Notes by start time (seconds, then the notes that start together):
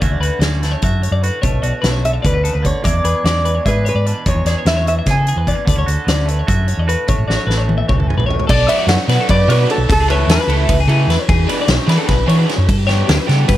0.01 D2 D3 A3 C#4 F#4 E5, kick, closed hi-hat
0.11 D2 D5
0.20 D2 F#4 B4, closed hi-hat
0.39 D2 C#4 D5, snare, closed hi-hat
0.61 A3 B4, snare, closed hi-hat
0.72 C#5
0.82 F#2 F#4 E5, kick, closed hi-hat
1.03 C#5, closed hi-hat
1.11 F#2 D5
1.23 A2 F#4 B4, closed hi-hat
1.42 B1 B2 A3 C#5, kick, closed hi-hat
1.52 B1
1.62 B1 F#4 D5, closed hi-hat
1.73 C#5
1.82 B1 A3 B4, snare, closed hi-hat
1.92 C#5
2.03 D3 E5, closed hi-hat
2.13 E5
2.22 D2 B2 B4 D5, kick, closed hi-hat
2.34 B4
2.43 C#3 A4, closed hi-hat
2.54 D2 B4
2.63 D3 C#5 D5, kick, closed hi-hat
2.83 E2 G#3 D5 E5, kick, closed hi-hat
2.93 E2 D5
3.04 E2 G#4 B4, closed hi-hat
3.24 E2 G#3 D5, snare, closed hi-hat
3.45 E3 B4, closed hi-hat
3.55 C#5
3.66 G#2 G#4 B4 E5, kick, closed hi-hat
3.85 B4 C#5, closed hi-hat
3.95 G#2 D5
4.06 B2 D4 B4, closed hi-hat
4.26 E2 G#3 C#5, kick, closed hi-hat
4.35 E2
4.45 E2 G#4 D5, snare, closed hi-hat
4.58 C#5
4.65 E2 G#3 B4 E5, snare, closed hi-hat
4.77 C#5
4.87 E3 E5, closed hi-hat
4.99 E5
5.06 C#3 G#4 C#5, kick, snare, closed hi-hat
5.10 G#5
5.17 A4
5.27 G#4, closed hi-hat
5.36 E2 B4
5.47 E2 B3 D5, kick, closed hi-hat
5.55 C#4
5.65 D2 D3 B3 D5, kick, closed hi-hat
5.76 D2 C#4 C#5
5.86 D2 F#4 A4, closed hi-hat
6.05 D2 B3 D5, snare, closed hi-hat
6.16 C#4
6.25 A3 B4, closed hi-hat
6.39 C#5
6.47 F#2 F#4 E5, kick, closed hi-hat
6.68 C#5, closed hi-hat
6.77 E2 D5
6.87 A2 F#4 B4, closed hi-hat
7.07 A1 A2 A3 C#5, kick, closed hi-hat
7.18 A1
7.28 A1 F#4 D5, snare
7.37 C#5
7.47 A1 A3 B4, snare
7.58 C#5
7.67 E3, high tom
7.78 E5
7.87 C#2 F#2 C#5, kick, mid tom
7.97 A4, mid tom
8.07 G#2 G#4, mid tom
8.17 A#1 B4, floor tom
8.26 A2 C#5
8.30 floor tom
8.39 floor tom
8.47 B1 A4 D5, kick, crash
8.68 F#3 B3 D4 F#4 B4 E5, ride
8.79 D5
8.87 F#2 C#5 F#5, snare, ride
9.08 B2 F#3 B3 D4 F#4 B4, snare, ride
9.20 A4
9.29 F#2 B4 D5, kick, ride
9.48 B2 F#3 B3 D4 F#4 B4 C#5, ride
9.61 B4
9.70 A4 C#5, ride
9.78 B1
9.89 C#2 A4, kick, ride
10.00 G#4
10.08 E3 A3 E4 A4 B4 C#5, ride
10.27 E2 G#4 B4, snare, ride
10.41 B4
10.47 C#2 E3 A3 E4 A4, ride
10.69 C#2 B4, kick, ride
10.80 G#4
10.87 C#3 E3 A3 E4 G#4 A4, ride
11.07 E2 B4, snare, ride
11.19 C#5
11.28 E2 G#4, kick, ride
11.48 E3 B3 D4 G#4 B4, ride
11.61 D5
11.68 B1 C#5, snare, ride
11.87 E3 B3 D4 G#4 B4, snare, ride
11.98 A4
12.08 B1 B4, kick, snare, ride
12.27 E3 B3 D4 G#4 C#5, ride
12.38 B4
12.47 C#5, snare, ride
12.58 F#2
12.67 G2 A4, kick, ride
12.78 G4
12.87 G3 B3 D4 G4 C#5, snare, ride
13.07 D2 G4, snare, ride
13.18 B4
13.27 C#3 G3 B3 D4 G4 A4, snare, ride
13.48 G2 B4, kick, ride